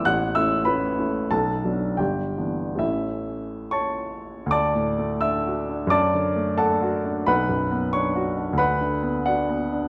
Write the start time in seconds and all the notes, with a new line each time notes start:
0.05 A1 F#5 F#6
0.35 A3 C#4 E4 E5 E6
0.65 A3 C#4 E4 B4 B5
0.99 A3 C#4 E4
1.31 B1 A4 A5
1.64 F#3 B3 D4
1.97 G1 G4 G5
2.37 E3 B3 D4
2.75 A1 E3 A3 C#4 E5
2.80 E4
3.71 C#5 A5 C#6
4.46 D2
4.51 D5 A5 D6
4.75 A2
4.98 A3
5.21 D4 E5 E6
5.46 F#4
5.69 D4
5.87 F#2 D6
5.91 D5 A5
6.14 D3
6.36 A3
6.57 D4 A4 F#5 A5
6.82 F#4
7.05 D4
7.26 B1 B4 F#5 B5
7.49 F#2
7.71 B3
7.93 D4 C#5 C#6
8.16 F#4
8.37 D4
8.53 D2
8.58 B4 F#5 B5
8.81 D3
9.03 B3
9.26 D4 F#4 D5 F#5
9.50 B3
9.72 D4